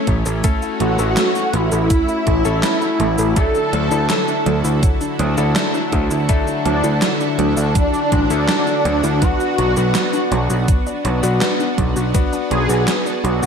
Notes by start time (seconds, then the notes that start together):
Already playing: A3 C#4 E4 A4
0.07 A1 A3, kick, closed hi-hat
0.26 A1 A4, cabasa
0.44 A3 C#4 E4 F#4 A4, kick, closed hi-hat, cabasa
0.62 E4, cabasa
0.80 A1 A3 F#4, closed hi-hat
0.99 A1 C#4 E4 A4, cabasa
1.17 A3, snare, clap, closed hi-hat, cabasa
1.35 E4, cabasa
1.54 A1 A3 E4, closed hi-hat
1.72 A1 A4, cabasa
1.90 A3, kick, closed hi-hat, cabasa
2.08 E4, cabasa
2.27 A1 A3, kick, closed hi-hat
2.45 A1 C#4 E4 A4, cabasa
2.63 A3, snare, clap, closed hi-hat, cabasa
2.82 E4, cabasa
3.00 A1 A3, closed hi-hat
3.18 A1 A4, cabasa
3.36 D3 F#3 A3 D4 E4 A4, kick, closed hi-hat, cabasa
3.55 D4, cabasa
3.73 D2 F#3, closed hi-hat
3.91 D2 F#3 A3 D4 E4 A4, cabasa
4.10 F#3, snare, clap, closed hi-hat, cabasa
4.28 D4, cabasa
4.46 D2 F#3, closed hi-hat
4.64 D2 E4, cabasa
4.83 F#3, kick, closed hi-hat, cabasa
5.01 D4, cabasa
5.19 D2 F#3, closed hi-hat
5.38 D2 F#3 A3 D4 E4 A4, cabasa
5.56 F#3, snare, clap, closed hi-hat, cabasa
5.74 D4, cabasa
5.92 D2 F#3, kick, closed hi-hat
6.11 D2 E4, cabasa
6.29 F#3 A3 D4 E4 A4, kick, closed hi-hat, cabasa
6.47 D4, cabasa
6.65 D2 F#3 D4, closed hi-hat
6.84 D2 F#3 A3 D4 E4 A4, cabasa
7.02 F#3, snare, clap, closed hi-hat, cabasa
7.20 D4, cabasa
7.39 D2 F#3 D4, closed hi-hat
7.57 D2 E4, cabasa
7.75 F#3, kick, closed hi-hat, cabasa
7.94 D4, cabasa
8.12 A1 F#3, kick, closed hi-hat
8.30 D2 F#3 A3 D4 E4 A4, cabasa
8.49 F#3, snare, clap, closed hi-hat, cabasa
8.67 D4, cabasa
8.85 D2 F#3, closed hi-hat
9.04 D2 E4, cabasa
9.22 F#3 B3 D4 F#4, kick, closed hi-hat, cabasa
9.40 D4, cabasa
9.58 B1 F#3, closed hi-hat
9.77 B1 B3 D4 F#4, cabasa
9.95 F#3, snare, clap, closed hi-hat, cabasa
10.13 D4, cabasa
10.32 B1 F#3, closed hi-hat
10.50 B1 F#4, cabasa
10.68 F#3, kick, closed hi-hat, cabasa
10.87 D4, cabasa
11.05 B1 F#3, closed hi-hat
11.23 B1 B3 D4 F#4, cabasa
11.41 F#3, snare, clap, closed hi-hat, cabasa
11.60 D4, cabasa
11.78 B1 F#3, kick, closed hi-hat
11.96 B1 F#4, cabasa
12.14 F#3 B3 D4 F#4, kick, closed hi-hat, cabasa
12.33 D4, cabasa
12.51 B1 F#3 G#4, closed hi-hat
12.69 B1 B3 D4 F#4, cabasa
12.88 F#3, snare, clap, closed hi-hat, cabasa
13.06 D4, cabasa
13.24 B1 F#3 F#4, closed hi-hat
13.42 B1 F#4, cabasa